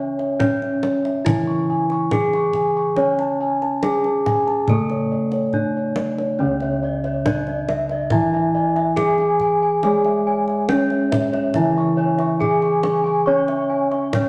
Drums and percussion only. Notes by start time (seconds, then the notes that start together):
0.19 kendang slap
0.40 kendang high, kendang low
0.62 kendang slap
0.83 kendang high
1.05 kendang slap
1.26 kendang high, kendang low
1.90 kendang slap
2.11 kendang high, kendang low
2.33 kendang slap
2.53 kendang low
2.96 kendang high
3.19 kendang slap
3.62 kendang slap
3.83 kendang high
4.04 kendang slap
4.26 kendang high, kendang low
4.48 kendang slap
4.68 kendang low
4.90 kendang slap
5.32 kendang slap
5.53 kendang low
5.96 kendang high
6.18 kendang slap
6.60 kendang slap
7.04 kendang slap
7.26 kendang high, kendang low
7.47 kendang slap
7.69 kendang high
7.89 kendang slap
8.10 kendang high, kendang low
8.76 kendang slap
8.97 kendang high, kendang low
9.18 kendang slap
9.40 kendang low
9.83 kendang high
10.05 kendang slap
10.48 kendang slap
10.69 kendang high
10.90 kendang slap
11.12 kendang high, kendang low
11.33 kendang slap
11.54 kendang low
12.19 kendang slap
12.41 kendang low
12.62 kendang slap
12.83 kendang high
13.48 kendang slap
13.92 kendang slap
14.13 kendang high, kendang low